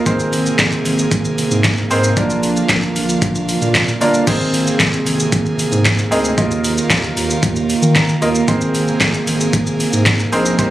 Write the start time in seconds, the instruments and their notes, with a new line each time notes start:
Already playing: analog synth pad A#3
0.06 sub bass G#1, analog synth pad C3 G#4, grand piano C4 D#4 G#4 A#4 C5, kick, closed hi-hat, shaker
0.20 shaker
0.33 open hi-hat, shaker
0.46 shaker
0.59 sub bass G#1, kick, snare, clap, closed hi-hat, shaker
0.72 shaker
0.85 sub bass G#1, open hi-hat, shaker
0.99 shaker
1.11 sub bass G#1, kick, closed hi-hat, shaker
1.25 shaker
1.38 open hi-hat, shaker
1.51 sub bass G#2, shaker
1.64 kick, snare, clap, closed hi-hat, shaker
1.78 shaker
1.90 sub bass G#2, grand piano C4 D#4 G#4 A#4 C5, open hi-hat, shaker
2.04 shaker
2.17 sub bass A#1, analog synth pad D3 F4, grand piano A#3 D4 F4 A#4 D5, kick, closed hi-hat, shaker
2.30 shaker
2.43 open hi-hat, shaker
2.57 shaker
2.69 sub bass A#1, kick, snare, clap, closed hi-hat, shaker
2.83 shaker
2.96 sub bass A#1, open hi-hat, shaker
3.09 shaker
3.22 sub bass A#1, kick, closed hi-hat, shaker
3.35 shaker
3.49 open hi-hat, shaker
3.62 sub bass A#2, shaker
3.75 kick, snare, clap, closed hi-hat, shaker
3.88 shaker
4.01 sub bass G1, grand piano A#3 D4 F4 A#4 D5, open hi-hat, shaker
4.14 shaker
4.27 sub bass G#1, analog synth pad C3 A#3 G#4, grand piano C4 D#4 G#4 A#4 C5, kick, closed hi-hat, crash, shaker
4.40 shaker
4.54 open hi-hat, shaker
4.67 shaker
4.80 sub bass G#1, kick, snare, clap, closed hi-hat, shaker
4.93 shaker
5.06 sub bass G#1, open hi-hat, shaker
5.20 shaker
5.32 sub bass G#1, kick, closed hi-hat, shaker
5.46 shaker
5.59 open hi-hat, shaker
5.72 sub bass G#2, shaker
5.85 kick, snare, clap, closed hi-hat, shaker
5.99 shaker
6.11 sub bass D2, grand piano C4 D#4 G#4 A#4 D#5, open hi-hat, shaker
6.25 shaker
6.37 sub bass D#2, analog synth pad D#3 F4, grand piano A#3 D#4 F4 A#4 D#5, kick, closed hi-hat, shaker
6.51 shaker
6.64 open hi-hat, shaker
6.78 shaker
6.90 sub bass D#2, kick, snare, clap, closed hi-hat, shaker
7.04 shaker
7.16 sub bass D#2, open hi-hat, shaker
7.30 shaker
7.43 sub bass D#2, kick, closed hi-hat, shaker
7.56 shaker
7.70 open hi-hat, shaker
7.82 sub bass D#3, shaker
7.96 grand piano A#5, kick, snare, clap, closed hi-hat, shaker
8.09 shaker
8.21 sub bass D#2, grand piano A#3 D#4 F4 A#4 D#5 F5, open hi-hat, shaker
8.35 shaker
8.48 sub bass G#1, analog synth pad C3 G#4, grand piano C4 D#4 G#4 A#4 C5, kick, closed hi-hat, shaker
8.61 shaker
8.75 open hi-hat, shaker
8.88 shaker
9.01 sub bass G#1, kick, snare, clap, closed hi-hat, shaker
9.14 shaker
9.27 sub bass G#1, open hi-hat, shaker
9.41 shaker
9.53 sub bass G#1, kick, closed hi-hat, shaker
9.67 shaker
9.80 open hi-hat, shaker
9.93 sub bass G#2, shaker
10.06 kick, snare, clap, closed hi-hat, shaker
10.19 shaker
10.32 sub bass A#1, grand piano C4 D#4 G#4 A#4 C5, open hi-hat, shaker
10.46 shaker
10.58 sub bass C2, grand piano C4 D#4 G4 A#4 C5, analog synth pad D#4, kick, closed hi-hat, shaker